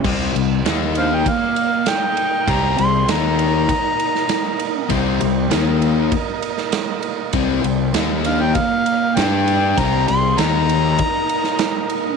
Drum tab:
CC |x---------------|----------------|----------------|----------------|
RD |--x-x-x-x-x-x-x-|x-x-x-x-x-x-x-x-|x-x-x-x-x-x-x-x-|x-x-x-x-x-x-x-x-|
SD |----o-------o---|----o------oo---|----o------oo---|----o-------o---|
BD |o-------o-------|o-------o-------|o-------o-------|o-------o-------|

CC |----------------|
RD |x-x-x-x-x-x-x-x-|
SD |----o------oo---|
BD |o-------o-------|